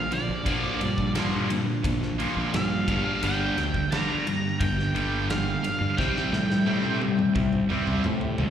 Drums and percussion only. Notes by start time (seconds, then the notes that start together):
0.12 ride
0.46 kick, ride
0.81 ride
0.98 kick
1.15 snare, ride
1.50 ride
1.84 kick, ride
2.02 snare
2.20 ride
2.54 snare, ride
2.88 kick, ride
3.23 ride
3.58 snare, ride
3.74 kick
3.92 snare, ride
4.27 ride
4.61 kick, ride
4.79 snare
4.96 ride
5.30 snare, ride
5.64 ride
5.98 kick, snare
6.16 snare
6.33 snare
6.50 snare
6.67 high tom
6.84 high tom
7.02 high tom
7.19 mid tom
7.36 kick, mid tom
7.53 mid tom
7.70 mid tom
7.87 mid tom
8.04 mid tom
8.21 floor tom
8.38 floor tom